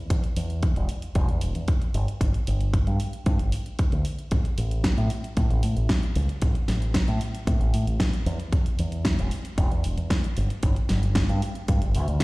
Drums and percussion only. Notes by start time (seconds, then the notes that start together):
0.10 kick, closed hi-hat
0.24 closed hi-hat
0.36 open hi-hat
0.50 closed hi-hat
0.63 kick, closed hi-hat
0.76 closed hi-hat
0.89 open hi-hat
1.02 closed hi-hat
1.15 kick, closed hi-hat
1.29 closed hi-hat
1.41 open hi-hat
1.55 closed hi-hat
1.68 kick, closed hi-hat
1.82 closed hi-hat
1.94 open hi-hat
2.08 closed hi-hat
2.21 kick, closed hi-hat
2.34 closed hi-hat
2.47 open hi-hat
2.61 closed hi-hat
2.74 kick, closed hi-hat
2.87 closed hi-hat
3.00 open hi-hat
3.13 closed hi-hat
3.26 kick, closed hi-hat
3.39 closed hi-hat
3.52 open hi-hat
3.66 closed hi-hat
3.79 kick, closed hi-hat
3.92 closed hi-hat
4.05 open hi-hat
4.19 closed hi-hat
4.31 kick, closed hi-hat
4.45 closed hi-hat
4.58 open hi-hat
4.71 closed hi-hat
4.84 kick, snare, closed hi-hat
4.98 closed hi-hat
5.10 open hi-hat
5.24 closed hi-hat
5.37 kick, closed hi-hat
5.50 closed hi-hat
5.63 open hi-hat
5.77 closed hi-hat
5.89 kick, snare, closed hi-hat
6.03 closed hi-hat
6.16 open hi-hat
6.29 closed hi-hat
6.42 kick, closed hi-hat
6.55 closed hi-hat
6.68 snare, open hi-hat
6.82 closed hi-hat
6.94 kick, snare, closed hi-hat
7.08 closed hi-hat
7.21 open hi-hat
7.35 closed hi-hat
7.47 kick, closed hi-hat
7.61 closed hi-hat
7.74 open hi-hat
7.87 closed hi-hat
8.00 kick, snare, closed hi-hat
8.13 closed hi-hat
8.26 open hi-hat
8.40 closed hi-hat
8.53 kick, closed hi-hat
8.66 closed hi-hat
8.79 open hi-hat
8.92 closed hi-hat
9.05 kick, snare, closed hi-hat
9.19 closed hi-hat
9.31 open hi-hat
9.45 closed hi-hat
9.58 kick, closed hi-hat
9.71 closed hi-hat
9.84 open hi-hat
9.98 closed hi-hat
10.10 kick, snare, closed hi-hat
10.24 closed hi-hat
10.37 open hi-hat
10.50 closed hi-hat
10.63 kick, closed hi-hat
10.76 closed hi-hat
10.89 snare, open hi-hat
11.03 closed hi-hat
11.15 kick, snare, closed hi-hat
11.29 closed hi-hat
11.42 open hi-hat
11.55 closed hi-hat
11.68 kick, closed hi-hat
11.82 closed hi-hat
11.95 open hi-hat
12.08 closed hi-hat
12.20 snare, closed hi-hat